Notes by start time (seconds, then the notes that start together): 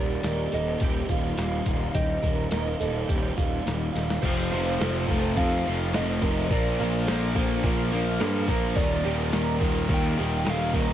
Already playing: D#1 D#2 G3 G4 A#4 D5
0.23 D#1 A#3 D#4 A#4, snare, closed hi-hat
0.52 D#1 A#3 D#4 A4 D#5, closed hi-hat
0.80 D#1 G3 G4, kick, closed hi-hat
1.09 D#1 D#3 A#3 F4, kick, closed hi-hat
1.38 D#1 G3 F5, snare, closed hi-hat
1.66 D#1 D#3 D#4 F4, kick, closed hi-hat
1.94 D#1 D#2 G4 D#5, kick, closed hi-hat
2.22 D#1 G3 A#4, kick, closed hi-hat
2.51 D#1 A#3 D#4 A#4, snare, closed hi-hat
2.80 D#1 A#3 D#4 A4, closed hi-hat
3.08 D#1 G3 G4, kick, closed hi-hat
3.36 D#1 D#3 A#3 F4, kick, closed hi-hat
3.67 D#1 G3, snare, closed hi-hat
3.93 D#1 D#3 D#4 F4, snare, closed hi-hat
4.10 snare
4.22 F1 F2 C3 F3 C5, kick, crash
4.51 F1 F2 C3 F3 A3 D#4 F4
4.78 F1 F2 C3 F3 C4 A4, snare, crash
5.08 F1 F2 C3 F3 A3 C4 A4, kick
5.36 F2 C3 F3 A3 D#4 F5, kick, crash
5.64 F1 F2 C3 F3 C4 F4
5.93 F1 F2 C3 F3 A3 A4 D#5, snare, crash
6.20 F1 F2 C3 F3 C4 D#4 A#4, kick
6.49 A#1 A#2 F3 A#3 A#4 D5, kick, crash
6.79 A#1 A#2 F3 A#3 F4
7.06 A#1 A#2 F3 A#3 D4 A4 C5, snare, crash
7.35 A#1 A#2 F3 A#3 D4 A4, kick
7.64 A#1 A#2 F3 A#3 F4 A#4, kick, crash
7.92 A#1 A#2 F3 A#3 D4 F4
8.19 G2 A#2 F3 A#3 A4, snare, crash
8.48 A#1 A#2 F3 A#3 D4 F4 A#4, kick
8.75 D#1 D#2 A#2 D#3 A#4 D5, kick, crash
9.04 D#1 D#2 A#2 D#3 G3 D#4 G4
9.32 D#1 D#2 A#2 D#3 A#3 A#4, snare, crash
9.60 D#1 D#2 A#2 D#3 G3 A#3 A#4, kick
9.88 D#2 A#2 D#3 G3 D#4, kick, crash
9.94 G5
10.16 D#1 D#2 A#2 D#3 A#3 G4
10.43 D#1 D#2 A#2 D#3 G3 A4, snare, crash
10.50 F5
10.73 D#1 D#2 A#2 D#3 A#3 D#4 A#4 D#5, kick